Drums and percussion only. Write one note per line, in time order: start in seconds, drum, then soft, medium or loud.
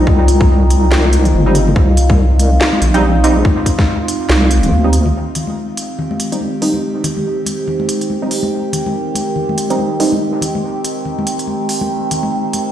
0.07 kick loud
0.28 closed hi-hat medium
0.41 kick loud
0.41 high conga medium
0.70 closed hi-hat medium
0.92 snare loud
1.05 high conga loud
1.13 closed hi-hat medium
1.25 closed hi-hat soft
1.25 low conga medium
1.33 high conga medium
1.55 closed hi-hat medium
1.67 high conga medium
1.67 low conga medium
1.76 kick loud
1.97 closed hi-hat medium
2.10 kick loud
2.10 high conga loud
2.39 closed hi-hat medium
2.39 high conga medium
2.61 snare loud
2.73 high conga medium
2.82 closed hi-hat medium
2.82 low conga medium
2.94 closed hi-hat soft
3.03 high conga medium
3.24 closed hi-hat medium
3.37 high conga medium
3.45 kick loud
3.66 kick medium
3.66 closed hi-hat medium
3.79 kick loud
3.79 snare soft
3.79 high conga medium
4.08 closed hi-hat medium
4.30 snare loud
4.42 high conga medium
4.51 closed hi-hat medium
4.63 closed hi-hat soft
4.63 low conga medium
4.71 high conga medium
4.93 closed hi-hat medium
5.06 high conga medium
5.06 low conga medium
5.35 closed hi-hat medium
5.35 low conga medium
5.47 high conga medium
5.77 closed hi-hat medium
5.99 low conga medium
6.11 high conga medium
6.20 closed hi-hat medium
6.32 closed hi-hat soft
6.41 high conga medium
6.62 open hi-hat medium
6.74 high conga medium
7.04 closed hi-hat medium
7.04 low conga medium
7.17 high conga medium
7.46 closed hi-hat medium
7.46 high conga medium
7.68 low conga medium
7.80 high conga medium
7.89 closed hi-hat medium
8.01 closed hi-hat soft
8.10 high conga medium
8.31 open hi-hat medium
8.43 high conga medium
8.73 closed hi-hat medium
8.73 low conga medium
8.86 high conga medium
9.15 closed hi-hat medium
9.15 high conga medium
9.36 low conga medium
9.49 high conga medium
9.58 closed hi-hat medium
9.70 closed hi-hat soft
9.79 high conga medium
10.00 open hi-hat medium
10.12 high conga medium
10.41 closed hi-hat medium
10.41 low conga medium
10.55 high conga medium
10.85 closed hi-hat medium
11.05 low conga medium
11.19 high conga medium
11.27 closed hi-hat medium
11.39 closed hi-hat soft
11.47 high conga medium
11.69 open hi-hat medium
11.81 high conga medium
12.11 closed hi-hat medium
12.11 low conga medium
12.23 high conga medium
12.53 closed hi-hat medium
12.53 high conga medium